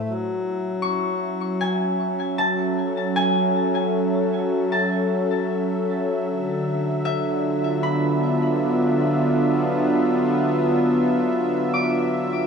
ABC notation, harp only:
X:1
M:4/4
L:1/8
Q:1/4=77
K:F#m
V:1 name="Harp"
g z c'2 g2 a2 | g4 a4- | a z e2 b4- | b3 z3 d'2 |]